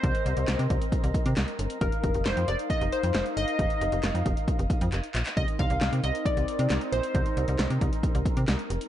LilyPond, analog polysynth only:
\new Staff \with { instrumentName = "Analog polysynth" } { \time 4/4 \key c \minor \tempo 4 = 135 c''2~ c''8 r4. | bes'4 c''8 d''8 ees''8 c''8 c''8 ees''8~ | ees''2~ ees''8 r4. | ees''8 f''4 ees''8 d''4. c''8~ |
c''4. r2 r8 | }